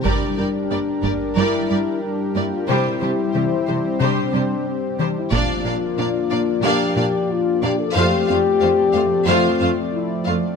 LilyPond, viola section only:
\new Staff \with { instrumentName = "Viola section" } { \time 4/4 \key g \dorian \tempo 4 = 91 <g g'>8 <g g'>8 <g g'>8 <g g'>8 <g g'>8 <g g'>8 r8 <g g'>8 | <g g'>8 <g g'>8 <g g'>8 <g g'>8 <g g'>8 <g g'>8 r8 <g g'>8 | <bes d'>8 <bes d'>8 <bes d'>8 <bes d'>8 <bes d'>8 <bes d'>8 r8 <bes d'>8 | <a f'>8 <a f'>8 <a f'>8 <a f'>8 <a f'>8 <a f'>8 r8 <a f'>8 | }